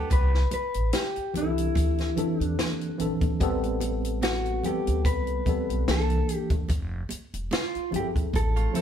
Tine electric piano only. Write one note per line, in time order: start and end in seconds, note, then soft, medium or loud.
0.00 0.13 G3 medium
0.00 0.13 D4 medium
0.00 0.14 F#4 medium
0.00 0.13 B4 medium
0.00 0.12 F#5 medium
1.34 2.00 E3 medium
1.34 2.01 C4 medium
1.34 2.01 D4 medium
1.34 1.43 G4 medium
1.43 2.05 A4 medium
2.16 2.83 E3 medium
2.16 2.83 C4 medium
2.16 2.83 D4 medium
2.16 2.84 A4 medium
2.98 3.32 E3 medium
2.98 3.32 C4 medium
2.98 3.33 D4 medium
2.98 3.33 A4 medium
3.40 4.39 G3 loud
3.40 4.39 B3 medium
3.40 4.40 C4 medium
3.40 4.40 A4 loud
4.64 5.30 G3 medium
4.64 5.31 B3 medium
4.64 5.31 C4 medium
4.64 5.31 A4 medium
5.47 5.88 G3 medium
5.47 5.88 B3 medium
5.47 5.88 C4 medium
5.47 5.88 A4 medium
5.87 6.54 E3 medium
5.87 6.55 A#3 medium
5.87 6.55 D4 medium
5.87 6.56 A4 medium
7.91 8.58 F3 medium
7.91 8.59 C4 medium
7.91 8.59 E4 medium
7.91 8.00 G#4 medium
8.01 8.63 A4 medium
8.73 8.81 F3 medium
8.73 8.81 C4 medium
8.73 8.81 E4 medium
8.73 8.81 A4 medium